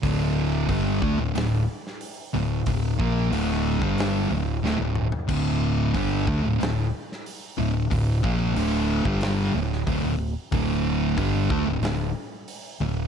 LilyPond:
<<
  \new Staff \with { instrumentName = "Distorted electric guitar" } { \clef bass \time 4/4 \key d \minor \tempo 4 = 92 <d, a, d>4 <g, d g>8 <d a>16 <d, a,>16 <d, a,>8 r4 <d, a,>8 | <d, a,>8 <bes, f bes>8 <d, a, d>8. <g, d g>8. <d, a,>8 <d, a,>16 <d, a,>8 r16 | <d, a, d>4 <g, d g>8 <d a>16 <d, a,>16 <d, a,>8 r4 <d, a,>8 | <d, a,>8 <bes, f bes>8 <d, a, d>8. <g, d g>8. <d, a,>8 <d, a,>16 <d, a,>8 r16 |
<d, a, d>4 <g, d g>8 <d a>16 <d, a,>16 <d, a,>8 r4 <d, a,>8 | }
  \new Staff \with { instrumentName = "Distorted electric guitar" } { \clef bass \time 4/4 \key d \minor <d, a, d>4 <g, d g>8 <d a>16 <d, a,>16 <d, a,>8 r4 <d, a,>8 | <d, a,>8 <bes, f bes>8 <d, a, d>8. <g, d g>8. <d, a,>8 <d, a,>16 <d, a,>8 r16 | <d, a, d>4 <g, d g>8 <d a>16 <d, a,>16 <d, a,>8 r4 <d, a,>8 | <d, a,>8 <bes, f bes>8 <d, a, d>8. <g, d g>8. <d, a,>8 <d, a,>16 <d, a,>8 r16 |
<d, a, d>4 <g, d g>8 <d a>16 <d, a,>16 <d, a,>8 r4 <d, a,>8 | }
  \new Staff \with { instrumentName = "Fingered electric bass" } { \clef bass \time 4/4 \key d \minor d,,4 g,,8 d,16 d,,16 d,,8 r4 d,,8 | d,,8 bes,,8 d,,8. g,,8. d,,8 d,,16 d,,8 r16 | d,,4 g,,8 d,16 d,,16 d,,8 r4 d,,8 | d,,8 bes,,8 d,,8. g,,8. d,,8 d,,16 d,,8 r16 |
d,,4 g,,8 d,16 d,,16 d,,8 r4 d,,8 | }
  \new DrumStaff \with { instrumentName = "Drums" } \drummode { \time 4/4 <hho bd>4 <hho bd>8 bd8 <hho sn>8. sn16 hho4 | <hho bd>8 bd8 hho8. bd16 <hho sn>4 sn8 toml16 tomfh16 | <cymc bd>4 <hho bd>8 bd8 <hho sn>8. sn16 hho4 | <hho bd>8 bd8 hho8. bd16 <hho sn>8. sn16 <hho bd>4 |
<hho bd>4 <hho bd>8 bd8 <hho sn>4 hho4 | }
>>